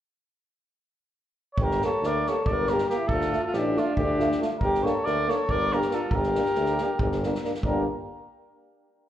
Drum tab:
SD |--------------|-oo-o-o---ooo-|-oo-o-o---ooo-|-oo-o-o---ooo-|
BD |--------------|o-------o-----|o-------o-----|o-------o-----|

SD |-oooooo--ooooo|--------------|
BD |o-------o-----|o-------------|